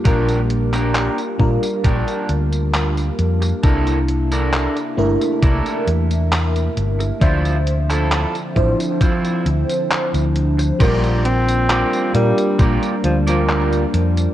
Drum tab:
CC |----------------|----------------|----------------|x---------------|
HH |xxxxxx-xxxxxxxxx|xxxxxx-xxxxxxxxx|xxxxxxxxxxxxxxxx|xxxxxxxxxxxxxxxx|
TB |xx-xxx-xxx-xxx-x|xx-xxx-xxx-xxx-x|xx-xxx-xxx-xxx-x|xx-xxx-xxx-xxx-x|
CP |---xx-------x---|----x-------x---|---xx-------x---|----x-------x---|
BD |o-----o-o-------|o-------o-------|o-----o-o-------|o-------o-------|